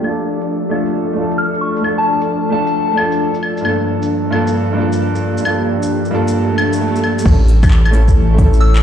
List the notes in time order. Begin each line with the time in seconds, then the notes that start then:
Already playing: F3 D4 G4 D5
0.01 A3 D4, claves
0.06 F4 A4
0.17 A3
0.41 shaker
0.66 A3 A4
0.71 D4 F4 A4, claves
0.86 shaker
1.13 A3 D4
1.18 F4 A4
1.31 shaker
1.38 F6
1.54 shaker
1.61 C#6
1.77 A3, shaker
1.83 D4 F4, claves
1.88 A4
1.98 A5
2.21 shaker
2.50 A3 D4 F4 A5
2.54 A4
2.67 shaker
2.92 A3 D4
2.97 F4 A4, claves
3.12 shaker
3.34 shaker
3.43 claves
3.57 G2, shaker
3.63 A#3 D4, claves
3.67 F4 A4
4.02 shaker
4.14 A#3
4.30 G2 A#3 D4 F4 A4, claves
4.47 shaker
4.72 G2 A#3
4.77 D4 F4 A4
4.92 shaker
5.15 shaker
5.22 G4
5.38 G2, shaker
5.42 A#3 D4, claves
5.47 F4 A4
5.83 shaker
6.05 shaker
6.11 G2 A#3 D4 F4 A4
6.28 shaker
6.35 swell
6.58 claves
6.73 shaker
6.96 shaker
7.04 claves
7.19 A3, shaker
7.24 A1 E3 C#4 E4, kick, crash
7.30 A4
7.47 A4, cabasa
7.63 kick, claves, shaker
7.71 A3, clap
7.85 claves
7.91 A3 C#4 E4, cabasa
7.95 C#4 A4
8.08 kick, shaker
8.16 C#5
8.34 A3 C#4
8.38 E4 A4, kick, cabasa
8.53 shaker
8.60 E6
8.76 clap, shaker